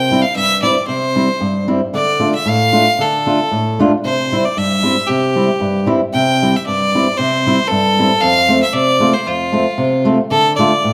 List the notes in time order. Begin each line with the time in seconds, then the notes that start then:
Already playing: C3 G5
0.11 G3 C4 E4
0.22 F5
0.36 G2 E5
0.62 G3 C4 E4 D5
0.87 C3 C5
1.16 G3 C4 E4
1.41 G2
1.68 G3 C4 E4
1.94 D3 D5
2.19 A3 D4 F4
2.35 E5
2.46 A2 F5
2.72 A3 D4 F4
2.99 D3 A4
3.26 A3 D4 F4
3.51 A2
3.79 A3 D4 F4
4.04 C3 C5
4.32 G3 C4 E4
4.45 D5
4.57 G2 E5
4.83 G3 C4 E4
5.06 C3 G4
5.36 G3 C4 E4
5.60 G2
5.86 G3 C4 E4
6.13 C3 G5
6.42 G3 C4 E4
6.56 E5
6.66 G2 D5
6.95 G3 C4 E4
7.18 C3 C5
7.46 G3 C4 E4
7.68 G2 A4
7.99 G3 C4 E4
8.21 F2 F5
8.48 A3 C4 F4
8.63 E5
8.73 C3 D5
9.00 A3 C4 F4
9.13 C5
9.26 F2 F4
9.52 A3 C4 F4
9.78 C3
10.05 A3 C4 F4
10.30 D3 A4
10.56 A3 D4 F4 D5
10.84 A2